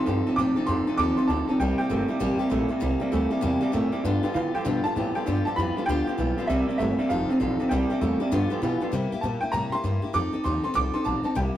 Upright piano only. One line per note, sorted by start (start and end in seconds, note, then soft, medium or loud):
0.00 0.23 C6 loud
0.36 0.68 D6 loud
0.66 0.99 C6 loud
0.98 1.18 D6 loud
1.17 1.29 C6 medium
1.27 1.46 A5 medium
1.48 1.60 A5 medium
1.60 1.77 G5 medium
1.78 2.36 G5 loud
4.35 4.40 F5 medium
4.55 4.83 G5 medium
4.84 5.16 A5 loud
5.15 5.47 G5 medium
5.45 5.57 A5 loud
5.56 5.88 B5 loud
5.86 6.44 G5 loud
6.47 6.76 E5 loud
6.78 7.10 E5 medium
7.09 7.72 F5 medium
7.69 8.16 G5 medium
9.21 9.40 A5 medium
9.41 9.53 G5 loud
9.52 9.73 A#5 loud
9.72 10.01 C6 loud
10.14 10.46 D6 loud
10.44 10.63 C6 loud
10.64 10.75 C6 loud
10.75 10.96 D6 loud
10.94 11.06 C6 medium
11.05 11.24 A5 medium
11.25 11.37 A5 medium
11.36 11.41 G5 medium